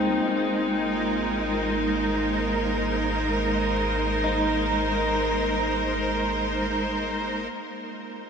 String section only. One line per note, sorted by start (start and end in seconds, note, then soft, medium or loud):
0.00 0.25 C#3 medium
0.00 7.53 G#3 medium
0.00 8.30 D#4 medium
0.00 2.03 F4 medium
0.84 8.30 A#4 medium
1.44 8.30 C5 medium
7.52 8.30 A#3 medium
7.82 8.30 F4 medium